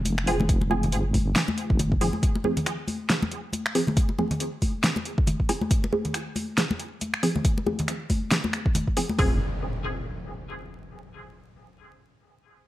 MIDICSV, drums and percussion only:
0, 0, Header, 1, 2, 480
1, 0, Start_track
1, 0, Key_signature, -4, "minor"
1, 0, Tempo, 434783
1, 541, Time_signature, 4, 2, 24, 8
1, 13995, End_track
2, 0, Start_track
2, 0, Title_t, "Drums"
2, 55, Note_on_c, 9, 63, 62
2, 60, Note_on_c, 9, 42, 76
2, 165, Note_off_c, 9, 63, 0
2, 170, Note_off_c, 9, 42, 0
2, 197, Note_on_c, 9, 26, 81
2, 300, Note_on_c, 9, 46, 87
2, 308, Note_off_c, 9, 26, 0
2, 411, Note_off_c, 9, 46, 0
2, 438, Note_on_c, 9, 64, 81
2, 447, Note_on_c, 9, 63, 96
2, 541, Note_on_c, 9, 36, 117
2, 541, Note_on_c, 9, 42, 77
2, 548, Note_off_c, 9, 64, 0
2, 558, Note_off_c, 9, 63, 0
2, 651, Note_off_c, 9, 36, 0
2, 651, Note_off_c, 9, 42, 0
2, 678, Note_on_c, 9, 62, 65
2, 781, Note_on_c, 9, 63, 92
2, 788, Note_off_c, 9, 62, 0
2, 892, Note_off_c, 9, 63, 0
2, 918, Note_on_c, 9, 42, 50
2, 928, Note_on_c, 9, 64, 83
2, 1020, Note_off_c, 9, 42, 0
2, 1020, Note_on_c, 9, 42, 77
2, 1039, Note_off_c, 9, 64, 0
2, 1131, Note_off_c, 9, 42, 0
2, 1260, Note_on_c, 9, 36, 63
2, 1260, Note_on_c, 9, 46, 59
2, 1261, Note_on_c, 9, 63, 70
2, 1371, Note_off_c, 9, 36, 0
2, 1371, Note_off_c, 9, 46, 0
2, 1371, Note_off_c, 9, 63, 0
2, 1499, Note_on_c, 9, 38, 123
2, 1499, Note_on_c, 9, 42, 73
2, 1610, Note_off_c, 9, 38, 0
2, 1610, Note_off_c, 9, 42, 0
2, 1632, Note_on_c, 9, 62, 49
2, 1636, Note_on_c, 9, 63, 99
2, 1740, Note_on_c, 9, 42, 52
2, 1743, Note_off_c, 9, 62, 0
2, 1747, Note_off_c, 9, 63, 0
2, 1851, Note_off_c, 9, 42, 0
2, 1877, Note_on_c, 9, 36, 110
2, 1978, Note_on_c, 9, 63, 71
2, 1980, Note_on_c, 9, 42, 74
2, 1983, Note_on_c, 9, 64, 80
2, 1987, Note_off_c, 9, 36, 0
2, 2088, Note_off_c, 9, 63, 0
2, 2090, Note_off_c, 9, 42, 0
2, 2094, Note_off_c, 9, 64, 0
2, 2117, Note_on_c, 9, 36, 64
2, 2220, Note_on_c, 9, 62, 47
2, 2221, Note_on_c, 9, 46, 86
2, 2227, Note_off_c, 9, 36, 0
2, 2331, Note_off_c, 9, 46, 0
2, 2331, Note_off_c, 9, 62, 0
2, 2353, Note_on_c, 9, 63, 94
2, 2460, Note_on_c, 9, 36, 120
2, 2461, Note_on_c, 9, 42, 77
2, 2463, Note_off_c, 9, 63, 0
2, 2570, Note_off_c, 9, 36, 0
2, 2571, Note_off_c, 9, 42, 0
2, 2599, Note_on_c, 9, 62, 68
2, 2695, Note_on_c, 9, 63, 99
2, 2710, Note_off_c, 9, 62, 0
2, 2806, Note_off_c, 9, 63, 0
2, 2837, Note_on_c, 9, 42, 52
2, 2837, Note_on_c, 9, 64, 94
2, 2941, Note_off_c, 9, 42, 0
2, 2941, Note_on_c, 9, 26, 63
2, 2941, Note_on_c, 9, 42, 77
2, 2947, Note_off_c, 9, 64, 0
2, 3051, Note_off_c, 9, 26, 0
2, 3051, Note_off_c, 9, 42, 0
2, 3175, Note_on_c, 9, 63, 68
2, 3180, Note_on_c, 9, 46, 60
2, 3286, Note_off_c, 9, 63, 0
2, 3291, Note_off_c, 9, 46, 0
2, 3419, Note_on_c, 9, 38, 114
2, 3419, Note_on_c, 9, 42, 72
2, 3530, Note_off_c, 9, 38, 0
2, 3530, Note_off_c, 9, 42, 0
2, 3560, Note_on_c, 9, 63, 100
2, 3562, Note_on_c, 9, 62, 51
2, 3660, Note_on_c, 9, 42, 51
2, 3670, Note_off_c, 9, 63, 0
2, 3672, Note_off_c, 9, 62, 0
2, 3770, Note_off_c, 9, 42, 0
2, 3893, Note_on_c, 9, 63, 66
2, 3901, Note_on_c, 9, 42, 74
2, 4004, Note_off_c, 9, 63, 0
2, 4011, Note_off_c, 9, 42, 0
2, 4037, Note_on_c, 9, 26, 85
2, 4140, Note_on_c, 9, 46, 88
2, 4148, Note_off_c, 9, 26, 0
2, 4251, Note_off_c, 9, 46, 0
2, 4275, Note_on_c, 9, 64, 81
2, 4284, Note_on_c, 9, 63, 98
2, 4380, Note_on_c, 9, 36, 114
2, 4380, Note_on_c, 9, 42, 79
2, 4386, Note_off_c, 9, 64, 0
2, 4394, Note_off_c, 9, 63, 0
2, 4491, Note_off_c, 9, 36, 0
2, 4491, Note_off_c, 9, 42, 0
2, 4513, Note_on_c, 9, 62, 60
2, 4621, Note_on_c, 9, 63, 91
2, 4623, Note_off_c, 9, 62, 0
2, 4731, Note_off_c, 9, 63, 0
2, 4757, Note_on_c, 9, 64, 93
2, 4758, Note_on_c, 9, 42, 54
2, 4860, Note_off_c, 9, 42, 0
2, 4860, Note_on_c, 9, 42, 79
2, 4867, Note_off_c, 9, 64, 0
2, 4971, Note_off_c, 9, 42, 0
2, 5100, Note_on_c, 9, 46, 61
2, 5101, Note_on_c, 9, 36, 58
2, 5107, Note_on_c, 9, 63, 60
2, 5211, Note_off_c, 9, 36, 0
2, 5211, Note_off_c, 9, 46, 0
2, 5217, Note_off_c, 9, 63, 0
2, 5341, Note_on_c, 9, 38, 107
2, 5341, Note_on_c, 9, 42, 75
2, 5451, Note_off_c, 9, 38, 0
2, 5451, Note_off_c, 9, 42, 0
2, 5477, Note_on_c, 9, 63, 86
2, 5486, Note_on_c, 9, 62, 54
2, 5580, Note_on_c, 9, 42, 52
2, 5588, Note_off_c, 9, 63, 0
2, 5597, Note_off_c, 9, 62, 0
2, 5691, Note_off_c, 9, 42, 0
2, 5718, Note_on_c, 9, 36, 101
2, 5817, Note_on_c, 9, 63, 59
2, 5821, Note_on_c, 9, 64, 78
2, 5822, Note_on_c, 9, 42, 80
2, 5828, Note_off_c, 9, 36, 0
2, 5927, Note_off_c, 9, 63, 0
2, 5931, Note_off_c, 9, 64, 0
2, 5932, Note_off_c, 9, 42, 0
2, 5958, Note_on_c, 9, 36, 60
2, 6061, Note_on_c, 9, 46, 92
2, 6062, Note_on_c, 9, 62, 53
2, 6069, Note_off_c, 9, 36, 0
2, 6171, Note_off_c, 9, 46, 0
2, 6172, Note_off_c, 9, 62, 0
2, 6198, Note_on_c, 9, 63, 91
2, 6301, Note_on_c, 9, 36, 116
2, 6301, Note_on_c, 9, 42, 81
2, 6308, Note_off_c, 9, 63, 0
2, 6411, Note_off_c, 9, 42, 0
2, 6412, Note_off_c, 9, 36, 0
2, 6446, Note_on_c, 9, 62, 73
2, 6542, Note_on_c, 9, 63, 95
2, 6556, Note_off_c, 9, 62, 0
2, 6652, Note_off_c, 9, 63, 0
2, 6678, Note_on_c, 9, 42, 54
2, 6681, Note_on_c, 9, 64, 89
2, 6781, Note_off_c, 9, 42, 0
2, 6781, Note_on_c, 9, 26, 63
2, 6781, Note_on_c, 9, 42, 83
2, 6791, Note_off_c, 9, 64, 0
2, 6891, Note_off_c, 9, 26, 0
2, 6891, Note_off_c, 9, 42, 0
2, 7019, Note_on_c, 9, 63, 68
2, 7022, Note_on_c, 9, 46, 64
2, 7129, Note_off_c, 9, 63, 0
2, 7132, Note_off_c, 9, 46, 0
2, 7262, Note_on_c, 9, 38, 109
2, 7262, Note_on_c, 9, 42, 78
2, 7372, Note_off_c, 9, 38, 0
2, 7372, Note_off_c, 9, 42, 0
2, 7404, Note_on_c, 9, 63, 80
2, 7406, Note_on_c, 9, 62, 55
2, 7502, Note_on_c, 9, 42, 57
2, 7514, Note_off_c, 9, 63, 0
2, 7516, Note_off_c, 9, 62, 0
2, 7613, Note_off_c, 9, 42, 0
2, 7742, Note_on_c, 9, 42, 82
2, 7746, Note_on_c, 9, 63, 56
2, 7852, Note_off_c, 9, 42, 0
2, 7856, Note_off_c, 9, 63, 0
2, 7878, Note_on_c, 9, 26, 79
2, 7981, Note_on_c, 9, 46, 93
2, 7989, Note_off_c, 9, 26, 0
2, 8092, Note_off_c, 9, 46, 0
2, 8120, Note_on_c, 9, 63, 76
2, 8122, Note_on_c, 9, 64, 76
2, 8220, Note_on_c, 9, 36, 113
2, 8221, Note_on_c, 9, 42, 84
2, 8231, Note_off_c, 9, 63, 0
2, 8233, Note_off_c, 9, 64, 0
2, 8331, Note_off_c, 9, 36, 0
2, 8331, Note_off_c, 9, 42, 0
2, 8364, Note_on_c, 9, 62, 62
2, 8461, Note_on_c, 9, 63, 96
2, 8474, Note_off_c, 9, 62, 0
2, 8572, Note_off_c, 9, 63, 0
2, 8598, Note_on_c, 9, 42, 55
2, 8607, Note_on_c, 9, 64, 86
2, 8700, Note_off_c, 9, 42, 0
2, 8700, Note_on_c, 9, 26, 58
2, 8700, Note_on_c, 9, 42, 86
2, 8718, Note_off_c, 9, 64, 0
2, 8810, Note_off_c, 9, 26, 0
2, 8810, Note_off_c, 9, 42, 0
2, 8940, Note_on_c, 9, 46, 62
2, 8941, Note_on_c, 9, 36, 60
2, 8946, Note_on_c, 9, 63, 68
2, 9051, Note_off_c, 9, 36, 0
2, 9051, Note_off_c, 9, 46, 0
2, 9056, Note_off_c, 9, 63, 0
2, 9180, Note_on_c, 9, 38, 110
2, 9180, Note_on_c, 9, 42, 82
2, 9290, Note_off_c, 9, 38, 0
2, 9290, Note_off_c, 9, 42, 0
2, 9319, Note_on_c, 9, 62, 61
2, 9323, Note_on_c, 9, 63, 84
2, 9420, Note_on_c, 9, 26, 60
2, 9420, Note_on_c, 9, 42, 57
2, 9430, Note_off_c, 9, 62, 0
2, 9433, Note_off_c, 9, 63, 0
2, 9530, Note_off_c, 9, 26, 0
2, 9530, Note_off_c, 9, 42, 0
2, 9557, Note_on_c, 9, 36, 103
2, 9659, Note_on_c, 9, 64, 86
2, 9660, Note_on_c, 9, 42, 85
2, 9660, Note_on_c, 9, 63, 62
2, 9668, Note_off_c, 9, 36, 0
2, 9770, Note_off_c, 9, 42, 0
2, 9770, Note_off_c, 9, 64, 0
2, 9771, Note_off_c, 9, 63, 0
2, 9798, Note_on_c, 9, 36, 59
2, 9900, Note_on_c, 9, 46, 93
2, 9906, Note_on_c, 9, 62, 56
2, 9908, Note_off_c, 9, 36, 0
2, 10010, Note_off_c, 9, 46, 0
2, 10016, Note_off_c, 9, 62, 0
2, 10040, Note_on_c, 9, 63, 95
2, 10141, Note_on_c, 9, 36, 103
2, 10141, Note_on_c, 9, 46, 88
2, 10150, Note_off_c, 9, 63, 0
2, 10251, Note_off_c, 9, 36, 0
2, 10251, Note_off_c, 9, 46, 0
2, 13995, End_track
0, 0, End_of_file